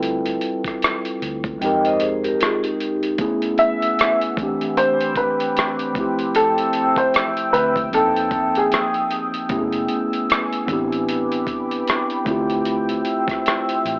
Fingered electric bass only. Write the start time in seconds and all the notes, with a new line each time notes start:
Already playing: D2
1.22 D2
1.61 F2
7.54 D2
7.93 F2
9.50 F#1
10.69 A1
12.27 D2
13.85 A1